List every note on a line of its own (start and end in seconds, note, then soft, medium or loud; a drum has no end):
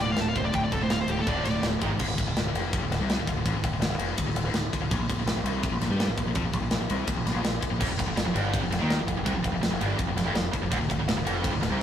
0.01 0.12 D1 loud
0.01 0.09 D5 medium
0.06 0.14 D2 medium
0.06 0.14 A2 medium
0.11 0.33 D2 medium
0.11 0.19 F5 loud
0.16 0.30 D1 medium
0.16 0.33 A2 medium
0.16 snare medium
0.16 ride medium
0.21 0.28 A5 medium
0.28 0.36 F5 loud
0.34 0.48 D1 medium
0.34 0.43 D2 medium
0.34 0.43 A2 medium
0.34 0.45 C5 loud
0.34 kick medium
0.34 ride medium
0.44 0.52 D2 medium
0.44 0.53 A2 medium
0.44 0.54 D5 medium
0.53 0.66 D1 loud
0.53 0.70 D2 medium
0.53 0.70 A2 loud
0.53 0.63 G5 loud
0.53 kick loud
0.53 ride medium
0.64 0.72 D5 medium
0.72 0.84 D1 medium
0.72 0.80 D2 medium
0.72 0.80 A2 medium
0.72 0.81 A4 loud
0.72 kick loud
0.72 ride medium
0.81 0.88 D2 medium
0.81 0.88 A2 medium
0.81 0.91 C5 medium
0.89 1.03 D1 medium
0.89 1.06 D2 medium
0.89 1.06 A2 medium
0.89 0.99 F5 loud
0.89 snare loud
0.89 ride loud
1.01 1.09 C5 loud
1.08 1.20 D1 loud
1.08 1.16 D2 medium
1.08 1.16 A2 medium
1.08 1.21 G4 loud
1.08 ride medium
1.17 1.26 D2 medium
1.17 1.26 A2 medium
1.21 1.28 A4 medium
1.27 1.39 D1 medium
1.27 1.44 D2 medium
1.27 1.43 A2 medium
1.27 1.44 D3 loud
1.27 1.44 D5 medium
1.27 kick loud
1.27 ride loud
1.44 1.57 D1 medium
1.44 1.52 D2 medium
1.44 1.52 A2 medium
1.44 1.63 D5 loud
1.44 snare soft
1.44 ride medium
1.53 1.61 D2 medium
1.53 1.61 A2 medium
1.62 1.75 D1 medium
1.62 1.79 D2 medium
1.62 1.79 A2 medium
1.62 snare loud
1.62 ride loud
1.79 1.94 G#1 medium
1.79 1.88 G#2 medium
1.79 1.89 D#3 loud
1.79 1.89 G#3 loud
1.79 kick medium
1.79 ride medium
1.90 1.99 G#2 medium
1.90 1.99 D#3 medium
1.99 2.07 D1 loud
1.99 2.07 D2 loud
1.99 kick loud
1.99 crash loud
2.07 2.16 D1 medium
2.07 2.16 D2 medium
2.18 2.26 D1 medium
2.18 2.26 D2 medium
2.18 kick medium
2.18 ride medium
2.27 2.35 D1 medium
2.27 2.36 D2 medium
2.36 2.44 D1 medium
2.36 2.46 D2 medium
2.36 snare loud
2.36 ride loud
2.45 2.53 D1 medium
2.45 2.55 D2 medium
2.55 2.80 F1 loud
2.55 2.81 F2 loud
2.55 ride medium
2.73 kick loud
2.73 ride loud
2.83 2.90 D1 medium
2.83 2.91 D2 medium
2.91 2.99 D1 loud
2.91 3.00 D2 medium
2.91 snare soft
2.91 ride medium
3.01 3.17 C2 loud
3.01 3.18 C3 loud
3.10 snare loud
3.10 ride loud
3.19 3.27 D1 medium
3.19 3.27 D2 medium
3.27 3.34 D1 medium
3.27 3.36 D2 medium
3.27 kick medium
3.27 ride medium
3.35 3.44 D1 medium
3.35 3.46 D2 medium
3.46 3.53 A1 medium
3.46 3.54 A2 loud
3.46 kick loud
3.46 ride medium
3.54 3.62 D1 medium
3.54 3.63 D2 medium
3.63 3.71 D1 medium
3.63 3.72 D2 medium
3.63 kick loud
3.63 ride medium
3.71 3.79 D1 medium
3.71 3.80 D2 medium
3.79 3.88 D1 medium
3.79 3.89 D2 medium
3.79 snare loud
3.79 ride loud
3.89 3.97 D1 loud
3.89 3.99 D2 medium
3.98 4.15 F1 medium
3.98 4.17 F2 loud
3.98 ride medium
4.17 4.25 D1 medium
4.17 4.25 D2 medium
4.17 kick loud
4.17 ride loud
4.26 4.34 D1 medium
4.26 4.35 D2 medium
4.35 4.43 D1 loud
4.35 4.44 D2 medium
4.35 ride medium
4.44 4.52 D1 loud
4.44 4.54 D2 medium
4.52 4.70 D1 medium
4.52 4.69 D2 medium
4.52 snare loud
4.52 ride loud
4.73 muted distorted electric guitar stroke medium
4.73 muted fingered electric bass stroke soft
4.73 kick medium
4.73 ride medium
4.80 4.89 D1 medium
4.80 4.90 D2 medium
4.91 4.98 A#1 loud
4.91 4.99 A#2 loud
4.91 kick loud
4.91 ride loud
4.99 5.07 A#1 medium
4.99 5.08 A#2 medium
5.10 5.16 A#1 medium
5.10 5.18 A#2 medium
5.10 kick medium
5.10 ride medium
5.17 5.25 A#1 medium
5.17 5.26 A#2 medium
5.26 5.34 A#1 medium
5.26 5.36 A#2 medium
5.26 snare loud
5.26 ride loud
5.35 5.43 A#1 medium
5.35 5.45 A#2 medium
5.44 5.69 C2 loud
5.44 5.72 C3 loud
5.44 ride medium
5.63 kick loud
5.63 ride loud
5.72 5.80 A#1 medium
5.72 5.81 A#2 medium
5.81 5.89 A#1 loud
5.81 5.91 A#2 medium
5.81 snare soft
5.81 ride medium
5.90 6.07 G2 loud
5.90 6.08 G3 medium
6.00 snare loud
6.00 ride loud
6.08 6.17 A#1 medium
6.08 6.17 A#2 medium
6.18 6.25 A#1 medium
6.18 6.27 A#2 medium
6.18 kick medium
6.18 ride medium
6.26 6.34 A#1 medium
6.26 6.36 A#2 medium
6.35 6.43 F2 loud
6.35 6.44 F3 loud
6.35 kick loud
6.35 ride loud
6.44 6.52 A#1 medium
6.44 6.53 A#2 medium
6.53 6.61 A#1 medium
6.53 6.61 A#2 medium
6.53 kick medium
6.53 ride medium
6.61 6.70 A#1 medium
6.61 6.70 A#2 medium
6.71 6.80 A#1 medium
6.71 6.80 A#2 medium
6.71 snare loud
6.71 ride loud
6.81 6.89 A#1 medium
6.81 6.90 A#2 medium
6.90 7.07 C2 loud
6.90 7.07 C3 loud
6.90 ride medium
7.07 7.16 A#1 medium
7.07 7.15 A#2 medium
7.07 kick loud
7.07 ride loud
7.16 7.25 A#1 medium
7.16 7.24 A#2 medium
7.26 7.34 A#1 loud
7.26 7.32 A#2 medium
7.26 snare soft
7.26 ride medium
7.33 7.43 A#1 loud
7.33 7.41 A#2 medium
7.42 7.61 A#1 medium
7.42 7.57 A#2 medium
7.42 snare loud
7.42 ride loud
7.61 muted distorted electric guitar stroke medium
7.61 muted fingered electric bass stroke soft
7.61 kick medium
7.61 ride medium
7.71 7.80 A#1 medium
7.71 7.79 A#2 medium
7.80 7.89 F1 loud
7.80 7.88 F2 loud
7.80 kick loud
7.80 crash loud
7.89 7.98 F1 medium
7.89 7.96 F2 medium
7.97 8.07 F1 loud
7.97 8.05 F2 medium
7.97 kick medium
7.97 ride medium
8.06 8.16 F1 medium
8.06 8.15 F2 medium
8.16 8.25 F1 medium
8.16 8.24 F2 medium
8.16 snare loud
8.16 ride loud
8.25 8.34 F1 medium
8.25 8.33 F2 medium
8.34 8.60 G1 loud
8.34 8.61 G2 loud
8.34 ride medium
8.54 kick loud
8.54 ride loud
8.62 8.71 F1 medium
8.62 8.70 F2 medium
8.71 8.81 F1 medium
8.71 8.80 F2 medium
8.71 snare soft
8.71 ride medium
8.79 8.98 D#2 loud
8.79 8.97 D#3 medium
8.90 snare loud
8.90 ride loud
8.98 9.07 F1 medium
8.98 9.06 F2 medium
9.08 9.16 F1 medium
9.08 9.16 F2 medium
9.08 kick medium
9.08 ride medium
9.17 9.26 F1 medium
9.17 9.25 F2 medium
9.25 9.34 C2 loud
9.25 9.34 C3 loud
9.25 kick loud
9.25 ride loud
9.35 9.44 F1 medium
9.35 9.43 F2 medium
9.44 9.53 F1 medium
9.44 9.52 F2 medium
9.44 kick medium
9.44 ride medium
9.53 9.62 F1 medium
9.53 9.60 F2 medium
9.62 9.71 F1 medium
9.62 9.70 F2 medium
9.62 snare loud
9.62 ride loud
9.72 9.80 F1 medium
9.72 9.80 F2 medium
9.81 9.97 G1 loud
9.81 9.98 G2 loud
9.81 ride medium
9.99 10.07 F1 medium
9.99 10.07 F2 medium
9.99 kick loud
9.99 ride loud
10.07 10.16 F1 medium
10.07 10.16 F2 medium
10.16 10.25 F1 medium
10.16 10.26 F2 medium
10.16 snare soft
10.16 ride medium
10.25 10.34 F1 loud
10.25 10.33 F2 medium
10.34 10.51 F1 medium
10.34 10.49 F2 medium
10.34 snare loud
10.34 ride loud
10.53 muted distorted electric guitar stroke medium
10.53 muted fingered electric bass stroke soft
10.53 kick medium
10.53 ride medium
10.62 10.71 F1 loud
10.62 10.71 F2 medium
10.71 10.80 D1 loud
10.71 10.79 D2 loud
10.71 kick loud
10.71 ride loud
10.81 10.89 D1 medium
10.81 10.89 D2 medium
10.90 10.97 D1 medium
10.90 10.98 D2 medium
10.90 kick medium
10.90 ride medium
10.98 11.06 D1 medium
10.98 11.07 D2 medium
11.06 11.15 D1 medium
11.06 11.16 D2 medium
11.06 snare loud
11.06 ride loud
11.16 11.25 D1 medium
11.16 11.25 D2 medium
11.25 11.51 F1 loud
11.25 11.52 F2 loud
11.25 ride medium
11.44 kick loud
11.44 ride loud
11.53 11.62 D1 medium
11.53 11.62 D2 medium
11.62 11.69 D1 loud
11.62 11.71 D2 medium
11.62 snare soft
11.62 ride medium
11.70 11.83 C2 loud
11.70 11.83 C3 medium